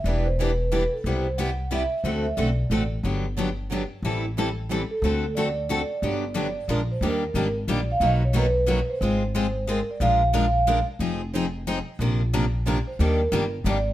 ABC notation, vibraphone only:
X:1
M:3/4
L:1/8
Q:"Swing" 1/4=181
K:G
V:1 name="Vibraphone"
d c B3 A | c2 f2 e2 | c e d3 z | z6 |
z4 z A- | A2 d d3- | d4- d c | [K:Eb] B3 z d f |
^d _d =B3 c- | c4 B d | f f4 z | z6 |
z4 z c | B3 z d2 |]